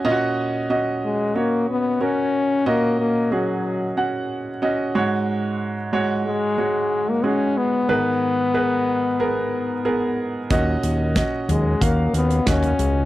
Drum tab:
HH |----------------|----------------|----------------|----------------|
SD |----------------|----------------|----------------|----------------|
FT |----------------|----------------|----------------|----------------|
BD |----------------|----------------|----------------|----------------|

HH |x-x-x-x-x-xxxxx-|
SD |----o-------o---|
FT |------o------o--|
BD |o---o---o---o---|